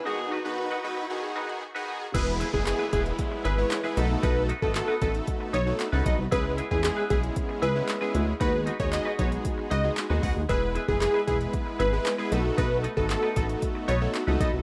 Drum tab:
CC |----------------|x---------------|----------------|----------------|
HH |----------------|x-x-x-xxx-x-x-x-|x-x-x-xxx-x-x-x-|x-x-x-xxx-x-x-x-|
CP |----------------|----x-------x---|----x-------x---|----x-------x---|
BD |----------------|o--o--o-o-------|o--o--o-o-----o-|o--o--o-o-------|

CC |----------------|----------------|----------------|
HH |x-xxx-xxx-x-x-o-|x-x-x-xxx-x-x-x-|x-x-x-xxx-x-x-x-|
CP |----x-------x---|----x-------x---|----x-------x---|
BD |o--o--o-o-----o-|o--o--o-o-------|o--o--o-o-----o-|